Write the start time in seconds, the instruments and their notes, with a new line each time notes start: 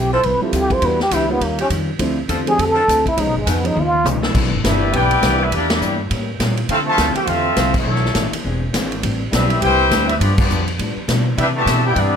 Already playing: upright bass B1, hollow-body jazz guitar F3 A3 C4 E4, trombone G4
0.13 saxophone section F3 C4 E4 A4, trombone C5
0.23 upright bass C2, hollow-body jazz guitar F3 A3 C4 E4, trombone B4, kick, ride
0.41 grand piano G3 C4 E4 F4 A4, trombone E4, muted upright bass stroke
0.53 upright bass D2, hollow-body jazz guitar F3 A3 C4 E4, trombone G4, kick, hi-hat pedal, ride
0.70 trombone C5, kick, ride
0.82 upright bass E2, hollow-body jazz guitar E3 B3 D4 G4, grand piano G3 B3 D4 E4 F#4, trombone B4, kick, ride
1.00 trombone G4, snare
1.11 upright bass C#2, hollow-body jazz guitar E3 B3 D4 G4, saxophone section E3 B3 D4 G4, trombone E4, kick, hi-hat pedal, ride
1.29 grand piano G3 A#3 C#4 D#4 F4, trombone B3
1.41 upright bass D#2, hollow-body jazz guitar D#3 G3 C#4 F4, trombone A#3, kick, ride
1.59 saxophone section F3 C#4 D#4 G4, trombone C#4, ride
1.70 upright bass F2, hollow-body jazz guitar D#3 G3 C#4 F4, kick, hi-hat pedal, ride
1.98 upright bass D2, hollow-body jazz guitar D3 A3 C4 F4, grand piano F3 A3 C4 D4 E4, kick, ride
2.28 upright bass E2, hollow-body jazz guitar D3 A3 C4 F4, saxophone section F3 C4 D4 A4, kick, hi-hat pedal, ride
2.46 grand piano F3 A3 C4 D4 G4, trombone G#4, ride
2.58 upright bass F2, hollow-body jazz guitar D3 A3 C4 F4, kick, ride
2.62 trombone A4
2.75 saxophone section F3 C4 D4 A4
2.88 upright bass D2, hollow-body jazz guitar D3 A3 C4 F4, kick, hi-hat pedal, ride
3.06 trombone E4, kick, ride
3.16 upright bass C#2, hollow-body jazz guitar C#3 F3 B3, grand piano F3 G#3 B3 C#4 D#4, kick, ride
3.21 trombone D#4, hollow-body jazz guitar D#4
3.27 upright bass B1
3.36 upright bass G#1, trombone G#3
3.46 upright bass F2, hollow-body jazz guitar C#3 F3 B3 D#4, saxophone section F3 C#4 D#4 B4, trombone B3, kick, hi-hat pedal, ride
3.63 grand piano F3 G#3 B3 C#4 D#4, trombone D#4, ride
3.75 upright bass D#2, hollow-body jazz guitar C#3 F3 B3 D#4, high tom
3.80 trombone F4
4.04 upright bass C#2, hollow-body jazz guitar C#3 F3 B3 D#4, hi-hat pedal, mid tom
4.23 saxophone section E3 C4 D4 A4, snare
4.34 upright bass C2, hollow-body jazz guitar C3 E3 B3 D4, kick, crash
4.43 upright bass B1
4.52 upright bass G1
4.64 upright bass G1, hollow-body jazz guitar C3 E3 B3 D4, trombone section G3 B3 E4, trumpet section D4 G4 B4 E5, kick, snare, hi-hat pedal, ride
4.92 upright bass B1, hollow-body jazz guitar C3 E3 B3 D4, trombone section B3 E4 G4, kick, ride
4.96 trumpet section E4 B4 D5 G5
5.11 ride
5.21 upright bass C2, hollow-body jazz guitar C3 E3 B3 D4, kick, snare, hi-hat pedal, ride
5.41 trombone section G3 B3 E4, trumpet section D4 G4 B4 E5
5.51 upright bass E2, hollow-body jazz guitar E3 A#3 D4 G4, trombone section G3 A#3 D4, kick, ride
5.55 trumpet section A#3 E4 G4 D5
5.70 trombone section G3 A#3 D4, trumpet section A#3 E4 G4 D5, snare, ride
5.80 upright bass G2, hollow-body jazz guitar E3 A#3 D4 G4, hi-hat pedal
6.10 hollow-body jazz guitar A2 G3 A#3 C#4, upright bass A2, kick, ride
6.40 hollow-body jazz guitar A2 G3 A#3 C#4, upright bass A#2, kick, snare, hi-hat pedal, ride
6.57 ride
6.69 upright bass D3, hollow-body jazz guitar D3 F3 C4 E4, trombone section A3 C4 F4, trumpet section C4 E4 A4 F5, kick, ride
6.85 trombone section C3 F3 A3, trumpet section E5 A5
6.89 trumpet section F4 C5
6.98 upright bass D2, hollow-body jazz guitar D3 F3 C4 E4, kick, snare, hi-hat pedal, ride
7.13 trombone section G4, trumpet section F5, muted upright bass stroke, ride
7.18 trumpet section E4 A4 C5 G5
7.27 upright bass E2, hollow-body jazz guitar D3 F3 C4 E4, trombone section A3 C4 F4, trumpet section C4 A4 E5 F5, kick, ride
7.56 upright bass C2, hollow-body jazz guitar D3 F3 C4 E4, kick, snare, hi-hat pedal, ride
7.74 trombone section F#3 A3 E4, trumpet section D4 A4 C#5 E5, kick, crash
7.85 upright bass B1, hollow-body jazz guitar B2 E3 A3 D4
7.96 snare
8.05 snare
8.15 upright bass A1, hollow-body jazz guitar B2 E3 A3 D4, kick, snare, hi-hat pedal, ride
8.33 muted upright bass stroke, ride
8.44 upright bass E1, hollow-body jazz guitar E3 C4 D4 G#4, kick
8.73 upright bass G#1, hollow-body jazz guitar E3 C4 D4 G#4, kick, snare, hi-hat pedal, ride
8.92 ride
9.02 upright bass A1, hollow-body jazz guitar A2 G3 C4 D4, kick, ride
9.32 upright bass B1, hollow-body jazz guitar A2 G3 C4 D4, trombone section G3 C4 E4, trumpet section C4 G4 B4 E5, kick, snare, hi-hat pedal, ride
9.50 ride
9.60 upright bass C2, hollow-body jazz guitar A2 G3 C4 D4, trombone section C4 E4 G4, trumpet section E4 B4 C5 G5, kick, ride
9.91 upright bass D2, hollow-body jazz guitar A2 G3 C4 D4, kick, snare, hi-hat pedal, ride
10.07 trombone section G3 C4 E4, trumpet section C4 G4 B4 E5, ride
10.18 hollow-body jazz guitar G2 F3 B3, upright bass G2, trombone section F3 B3 D4, trumpet section B3 F4 G4 D5, kick, ride
10.23 hollow-body jazz guitar D4
10.36 trombone section F3 B3 D4, trumpet section B3 F4 G4 D5, kick, crash
10.48 upright bass F2, hollow-body jazz guitar G2 F3 B3 D4, hi-hat pedal
10.68 ride
10.78 hollow-body jazz guitar G2 F3 B3 D4, upright bass A2, kick, ride
10.97 muted upright bass stroke
11.08 hollow-body jazz guitar G2 F3 B3 D4, upright bass B2, kick, snare, hi-hat pedal, ride
11.37 hollow-body jazz guitar C3 E3 B3 D4, upright bass C3, trombone section G3 B3 E4, trumpet section D4 G4 B4 E5, kick, ride
11.55 trombone section B2 E3 A3, trumpet section G4 D5 E5 A5
11.66 upright bass B2, hollow-body jazz guitar C3 E3 B3 D4, kick, snare, hi-hat pedal, ride
11.86 trombone section B3 E4 G4, trumpet section E4 B4 D5 G5
11.95 upright bass G2, hollow-body jazz guitar C3 E3 B3 D4, trombone section G3 B3 D4, kick, ride
12.00 trumpet section B3 E4 G4 D5